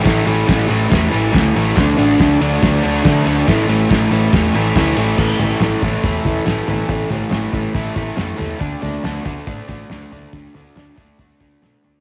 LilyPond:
<<
  \new Staff \with { instrumentName = "Overdriven electric guitar" } { \clef bass \time 4/4 \key d \lydian \tempo 4 = 140 <a, e a>8 <a, e a>8 <a, e a>8 <a, e a>8 <a, e a>8 <a, e a>8 <a, e a>8 <a, e a>8 | <d a d'>8 <d a d'>8 <d a d'>8 <d a d'>8 <d a d'>8 <d a d'>8 <d a d'>8 <d a d'>8 | <a, e a>8 <a, e a>8 <a, e a>8 <a, e a>8 <a, e a>8 <a, e a>8 <a, e a>8 <a, e a>8 | <a, e a>8 <a, e a>8 <a, e a>8 <a, e a>8 <a, e a>8 <a, e a>8 <a, e a>8 <a, e a>8 |
<a, e a>8 <a, e a>8 <a, e a>8 <a, e a>8 <a, e a>8 <a, e a>8 <a, e a>8 <a, e a>8 | <d a d'>8 <d a d'>8 <d a d'>8 <d a d'>8 <d a d'>8 <d a d'>8 <d a d'>8 <d a d'>8 | <d a d'>8 <d a d'>8 <d a d'>8 <d a d'>8 <d a d'>8 <d a d'>8 <d a d'>8 <d a d'>8 | }
  \new Staff \with { instrumentName = "Picked electric bass" } { \clef bass \time 4/4 \key d \lydian a,,8 a,,8 a,,8 a,,8 e,8 a,,8 d,8 a,,8 | d,8 a,,8 d,8 d,8 d,8 d,8 d8 d,8 | a,,8 a,,8 a,,8 a,,8 e,8 a,,8 d,8 a,,8 | a,,8 a,,8 a,,8 a,,8 e,8 e,,8 a,,8 a,,8 |
a,,8 a,,8 a,,8 a,,8 a,,8 a,,8 fis,8 e,8 | d,8 d,8 d,8 d,8 a,8 a,,8 d,8 d,8 | d,8 d,8 d,8 d,8 d,8 d,8 b,8 d,8 | }
  \new DrumStaff \with { instrumentName = "Drums" } \drummode { \time 4/4 <bd cymr sn>8 cymr8 <bd cymr sn>8 cymr8 <bd cymr sn>8 cymr8 <bd cymr sn>8 cymr8 | <bd cymr sn>8 cymr8 <bd cymr sn>8 cymr8 <bd cymr sn>8 cymr8 <bd cymr sn>8 cymr8 | <bd cymr sn>8 cymr8 <bd cymr sn>8 cymr8 <bd cymr sn>8 cymr8 <bd cymr sn>8 cymr8 | <cymc bd tomfh>8 tomfh8 <sn tomfh>8 <bd tomfh>8 <bd tomfh>8 <bd tomfh>8 <sn tomfh>8 tomfh8 |
<bd tomfh>8 tomfh8 <sn tomfh>8 <bd tomfh>8 <bd tomfh>8 <bd tomfh>8 <sn tomfh>8 tomfh8 | <bd tomfh>8 tomfh8 <sn tomfh>8 <bd tomfh>8 <bd tomfh>8 <bd tomfh>8 <sn tomfh>8 tomfh8 | <bd tomfh>8 tomfh8 <sn tomfh>8 <bd tomfh>8 <bd tomfh>8 <bd tomfh>8 <sn tomfh>8 tomfh8 | }
>>